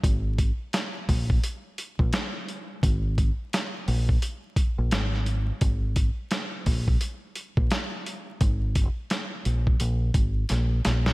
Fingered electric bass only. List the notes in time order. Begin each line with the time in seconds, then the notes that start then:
0.04 G#1
1.09 A#1
1.99 A#1
2.83 G#1
3.88 A#1
4.78 A#1
4.92 G#1
5.62 G#1
6.67 A#1
7.57 A#1
8.41 G#1
9.46 A#1
9.81 A#1
10.15 G#1
10.51 A#1
10.86 A#1